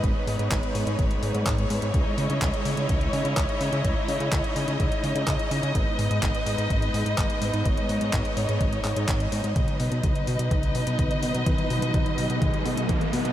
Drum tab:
HH |x-oxxxoxxxoxxxox|x-oxxxoxxxoxxxox|x-oxxxoxxxoxxxox|x-oxxxoxxxoxxxox|
CP |----x-------x---|----x-------x---|----x-------x---|----x-------x---|
T2 |----------------|----------------|----------------|----------------|
BD |o---o---o---o---|o---o---o---o---|o---o---o---o---|o---o---o---o---|

HH |xxoxxxoxxxoxxxox|xxoxxxoxxxoxxxox|xxoxxxoxxxoxxxox|
CP |----x-----x-x---|----------------|----------------|
T2 |----------------|o---o---o---o---|o---o---o---o---|
BD |o---o---o---o---|o---o---o---o---|o---o---o---o---|